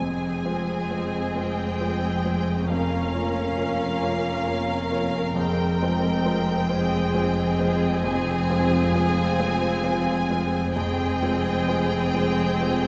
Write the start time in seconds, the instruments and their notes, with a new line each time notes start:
Already playing: violin section G#5
0.00 double bass section F1, felt piano F2, cello section F2, french horn section G#3 G#4, viola section C4, violin section G#4
0.45 felt piano G#3 F4 C5
0.90 felt piano G#3 F4 C5
1.35 felt piano G#3 F4 C5, violin section G5
1.81 felt piano G#3 F4 C5
2.24 felt piano G#3 F4 C5
2.68 felt piano F2, french horn section A#3 F4, viola section C#4, violin section A#4 F5
3.14 felt piano A#3 F4 C#5
3.57 felt piano A#3 F4 C#5
4.02 felt piano A#3 F4 C#5
4.47 felt piano A#3 F4 C#5
4.91 felt piano A#3 F4 C#5
5.33 double bass section F1, felt piano F2, cello section F2, french horn section G#3 G#4, viola section C4, violin section G5
5.81 felt piano G#3 F4 C5
6.24 felt piano G#3 F4 C5
6.68 felt piano G#3 F4 C5, violin section G#4
7.13 felt piano G#3 F4 C5
7.59 felt piano G#3 F4 C5
8.01 felt piano F2, french horn section C4 F4, violin section G#5
8.50 felt piano G#3 F4 C5
8.94 felt piano G#3 F4 C5
9.39 felt piano G#3 F4 C5
9.84 felt piano G#3 F4 C5
10.30 felt piano G#3 F4 C5
10.72 double bass section F1, cello section F2, felt piano F2, french horn section G#3 G#4, viola section C4, violin section G#4 G5
11.22 felt piano G#3 F4 C5
11.67 felt piano G#3 F4 C5
12.14 felt piano G#3 F4 C5
12.60 felt piano G#3 F4 C5